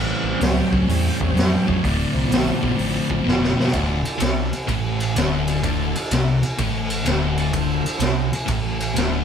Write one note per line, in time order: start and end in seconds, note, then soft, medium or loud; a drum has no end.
0.00 0.13 A1 medium
0.00 0.38 A2 medium
0.00 0.38 E3 medium
0.00 1.78 G3 medium
0.00 1.79 C4 medium
0.00 1.79 C#4 medium
0.24 0.34 A1 medium
0.36 0.69 A2 loud
0.36 0.69 F#3 loud
0.36 0.40 C5 medium
0.40 0.60 C#2 medium
0.40 0.57 C#5 loud
0.40 snare loud
0.40 open hi-hat medium
0.55 0.71 G5 medium
0.70 0.82 C#2 medium
0.70 0.86 A2 medium
0.70 0.86 F#3 medium
0.70 0.86 C#5 medium
0.70 kick medium
0.87 1.08 E2 loud
0.87 1.32 A2 medium
0.87 1.33 E3 loud
0.87 1.03 C#5 medium
0.87 open hi-hat medium
1.03 1.19 G5 medium
1.19 1.30 E2 loud
1.19 1.34 C#5 medium
1.19 kick medium
1.29 1.34 C5 medium
1.35 1.55 F2 loud
1.35 1.64 A2 medium
1.35 1.64 F#3 loud
1.35 1.51 C#5 loud
1.35 snare loud
1.35 open hi-hat medium
1.51 1.66 G5 medium
1.66 1.78 F2 medium
1.66 1.81 A2 medium
1.66 1.81 F#3 medium
1.66 1.79 C#5 medium
1.66 kick medium
1.80 2.03 D1 medium
1.80 2.27 D2 medium
1.80 2.27 A2 loud
1.80 1.84 C#5 medium
1.80 3.21 D5 loud
1.80 kick loud
1.84 open hi-hat medium
2.12 2.24 C2 loud
2.12 3.67 F3 medium
2.12 3.68 C4 medium
2.12 3.68 E4 medium
2.29 2.50 A#1 loud
2.29 2.58 D2 medium
2.29 2.58 B2 medium
2.29 open hi-hat medium
2.33 snare loud
2.60 2.72 A#1 loud
2.60 2.75 D2 medium
2.60 2.76 B2 medium
2.60 kick medium
2.76 2.98 A1 loud
2.76 3.21 D2 medium
2.76 3.21 A2 loud
2.76 open hi-hat medium
3.10 3.19 A1 loud
3.10 kick medium
3.23 3.55 F1 medium
3.23 3.53 D2 loud
3.23 3.53 B2 loud
3.28 snare medium
3.43 snare medium
3.56 3.69 D2 medium
3.56 3.71 B2 medium
3.56 snare loud
3.67 4.02 D2 loud
3.67 snare loud
3.72 4.03 D1 medium
3.72 4.48 D4 medium
3.72 4.48 F4 medium
3.72 4.49 A4 medium
3.72 4.49 D5 medium
3.72 kick medium
3.72 ride medium
4.03 muted distorted electric guitar stroke medium
4.03 ride medium
4.18 4.50 C2 medium
4.18 4.50 C3 loud
4.18 snare loud
4.18 ride medium
4.52 muted distorted electric guitar stroke medium
4.52 muted picked electric bass stroke soft
4.52 ride medium
4.67 5.12 A1 medium
4.67 5.14 A2 medium
4.67 kick medium
4.67 ride medium
5.00 ride medium
5.15 5.60 D1 medium
5.15 5.62 D2 medium
5.15 5.38 D4 medium
5.15 5.39 F4 medium
5.15 5.39 A4 medium
5.15 5.39 D5 medium
5.15 snare loud
5.15 ride medium
5.46 5.58 D4 medium
5.46 5.58 F4 medium
5.46 5.58 A4 medium
5.46 5.59 D5 medium
5.46 ride medium
5.63 5.93 D1 medium
5.63 5.94 D2 loud
5.63 6.39 D4 medium
5.63 6.39 F4 medium
5.63 6.40 A4 medium
5.63 6.39 D5 medium
5.63 kick loud
5.63 ride medium
5.95 muted distorted electric guitar stroke medium
5.95 ride medium
6.11 6.40 C2 medium
6.11 6.41 C3 medium
6.11 snare loud
6.11 ride medium
6.42 muted distorted electric guitar stroke medium
6.42 muted picked electric bass stroke soft
6.42 ride medium
6.58 7.02 A1 loud
6.58 7.04 A2 loud
6.58 kick medium
6.58 ride medium
6.90 ride medium
7.02 7.50 D1 medium
7.02 7.51 D2 loud
7.02 7.26 D4 medium
7.02 7.27 F4 medium
7.02 7.27 A4 medium
7.02 7.28 F5 medium
7.02 ride medium
7.07 snare loud
7.37 7.49 D4 medium
7.37 7.48 F4 medium
7.37 7.49 A4 medium
7.37 7.49 D5 medium
7.37 ride medium
7.51 7.83 D1 medium
7.51 7.84 D2 medium
7.51 8.28 D4 medium
7.51 8.28 F4 medium
7.51 8.29 A4 medium
7.51 8.29 C5 medium
7.51 kick loud
7.51 ride medium
7.85 muted distorted electric guitar stroke medium
7.85 ride medium
7.99 8.30 C2 medium
7.99 8.31 C3 loud
7.99 snare loud
7.99 ride medium
8.32 muted picked electric bass stroke soft
8.32 muted distorted electric guitar stroke medium
8.32 ride medium
8.46 8.92 A1 medium
8.46 8.94 A2 medium
8.46 kick loud
8.46 ride medium
8.80 ride medium
8.94 9.24 D1 medium
8.94 9.24 D2 loud
8.94 9.18 D4 medium
8.94 9.19 F4 medium
8.94 9.19 A4 medium
8.94 9.19 F5 medium
8.94 snare loud
8.94 ride medium